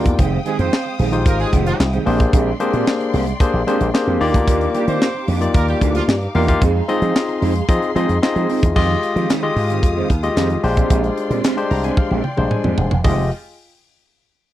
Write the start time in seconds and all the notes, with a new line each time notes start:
Already playing: A#3 D#4 F4 G4 D5 G5 D6
0.05 E2, muted clean electric guitar stroke, kick, closed hi-hat
0.18 F1 D#3 G#3 C4 G4 F5 D#6, kick, closed hi-hat
0.45 D#3 G#3 C4 G4 G#4, closed hi-hat
0.58 F2 D#3 G#3 C4 G4 C5, closed hi-hat
0.72 muted clean electric guitar stroke, snare, clap
0.85 muted clean electric guitar stroke
0.98 A#1 D#3 G#3 C4 G4, open hi-hat
1.12 G#3 D#4 F4 G4 C5, muted clean electric guitar stroke, closed hi-hat
1.26 G#1 A#3 A#4, kick, closed hi-hat
1.39 G#3 G#4, muted clean electric guitar stroke, closed hi-hat
1.52 F1 D#3 G#3 C4 G4, kick, closed hi-hat
1.66 F3 F4, muted clean electric guitar stroke, closed hi-hat
1.79 C2, muted clean electric guitar stroke, snare, clap
1.92 D#3 G#3 C4 G4, closed hi-hat
2.06 A#1 G#3 A#3 C4 D4 G4 G#4 C5 D5 C6, open hi-hat
2.19 muted clean electric guitar stroke, kick, closed hi-hat
2.33 A#1 G#3 C4 D4 G4, kick, closed hi-hat
2.59 G#3 A#3 C4 D4 G4 G#4 C5, closed hi-hat
2.73 A#2 G#3 C4 D4 G4, closed hi-hat
2.86 muted clean electric guitar stroke, snare, clap
3.00 muted clean electric guitar stroke, closed hi-hat
3.13 C2 G#3 C4 D4 G4, open hi-hat
3.27 muted clean electric guitar stroke, closed hi-hat
3.40 A#3 D4 G4 G#4 C5, kick, closed hi-hat
3.53 A#1, muted clean electric guitar stroke
3.66 G#3 A#3 C4 D4 G4 G#4 C5, closed hi-hat
3.80 A#1, muted clean electric guitar stroke, closed hi-hat
3.94 A#3 D4 G4 G#4 C5, snare, clap
4.07 F2 G#3 C4 D4 G4
4.20 D#2 F3 A#3 D4 D#4 F4 G4 A#4 D5 F5 D6, open hi-hat
4.34 D2, muted clean electric guitar stroke, kick, closed hi-hat
4.47 D#2 F3 A#3 D4 G4, kick, closed hi-hat
4.61 closed hi-hat
4.74 F3 G3 A#3 D4 G4, closed hi-hat
4.87 D#3 F3 A#3 C4 D4 G4 C5, closed hi-hat
5.01 muted clean electric guitar stroke, snare, clap
5.14 muted clean electric guitar stroke
5.27 F2 F3 A#3 D4 G4, open hi-hat
5.41 A#3 D#4 F4 G4 D5, muted clean electric guitar stroke, closed hi-hat
5.54 D#2 A#3 A#4, kick, closed hi-hat
5.68 G3 G4, muted clean electric guitar stroke, closed hi-hat
5.81 D2 F3 A#3 D4 G4, kick, closed hi-hat
5.94 F3 F4, muted clean electric guitar stroke, closed hi-hat
6.08 G2, muted clean electric guitar stroke, snare, clap
6.21 muted clean electric guitar stroke, closed hi-hat
6.34 E2 F3 A#3 D4 D#4 F4 G4 A#4 F5, open hi-hat
6.48 A#3 D#4 F4 G4 F5, muted clean electric guitar stroke, kick, closed hi-hat
6.61 F2 G#3 C4 D#4 G#4 C6, kick, closed hi-hat
6.88 G#3 C4 D#4 F4 G#4 D#5, closed hi-hat
7.01 F3 G#3 C4 D#4 G#4, closed hi-hat
7.15 muted clean electric guitar stroke, snare, clap
7.28 muted clean electric guitar stroke, closed hi-hat
7.41 F2 G#3 C4 D#4 G#4, open hi-hat
7.55 muted clean electric guitar stroke, closed hi-hat
7.68 F3 C4 D#4 F4 G#4 D#5, kick, closed hi-hat
7.82 muted clean electric guitar stroke, closed hi-hat
7.95 F3 G#3 C4 D#4 F4 G#4 D#5, closed hi-hat
8.08 F2, muted clean electric guitar stroke, closed hi-hat
8.22 C4 D#4 F4 G#4 D#5, snare, clap
8.35 F3 G#3 C4 D#4 G#4, closed hi-hat
8.49 G#3 C4 D#4 A#4, open hi-hat
8.62 E2, muted clean electric guitar stroke, kick, closed hi-hat
8.75 F2 D#3 G#3 C4 F4 G4 D#5 F5 D#6, kick, crash
8.89 muted clean electric guitar stroke
9.02 muted clean electric guitar stroke, closed hi-hat
9.15 D#3 F3 G#3 C4 G4, closed hi-hat
9.29 D#3 G#3 C4 G4, snare, clap, closed hi-hat
9.42 G#3 F4 G4 D#5, muted clean electric guitar stroke
9.56 G#2, open hi-hat
9.69 D#3 G#3 C4 G4, closed hi-hat
9.83 F2, muted clean electric guitar stroke, kick, closed hi-hat
9.96 D#3 G#3 C4 G4
10.09 D#2, muted clean electric guitar stroke, kick, closed hi-hat
10.23 G#3 F4 G4 D#5, muted clean electric guitar stroke, closed hi-hat
10.36 F2 D#3 G#3 C4 G4, snare, clap, closed hi-hat
10.50 muted clean electric guitar stroke, closed hi-hat
10.63 A#1 G#3 D4 G4 C5 D5 C6, muted clean electric guitar stroke, open hi-hat
10.76 G#3 C4 D4 G4, kick, closed hi-hat
10.90 A#1 G#3 C4 D4 G4, kick, closed hi-hat
11.03 muted clean electric guitar stroke, closed hi-hat
11.17 muted clean electric guitar stroke, closed hi-hat
11.30 A#2 G#3 C4 D4 G4, closed hi-hat
11.44 G#3 C4 D4 G4, snare, clap, closed hi-hat
11.57 G#3 D4 G4 C5, muted clean electric guitar stroke, closed hi-hat
11.71 C2 A#5, muted clean electric guitar stroke, open hi-hat
11.84 G#3 C4 D4 G4 G#5, closed hi-hat
11.97 F5, kick, high tom
12.11 A#1 G#3 C4 D4 G4, high tom
12.24 G5, muted clean electric guitar stroke, mid tom
12.37 A#1 G3 G#3 D4 C5, muted clean electric guitar stroke, mid tom
12.51 G#5, muted clean electric guitar stroke, mid tom
12.64 F2 G#3 C4 D4 G4, mid tom
12.78 D#1, muted clean electric guitar stroke, floor tom
12.91 E1, muted clean electric guitar stroke, floor tom
13.04 F1 D#3 G#3 C4 F4 G4 G#4 D#5 G5, kick, floor tom, open hi-hat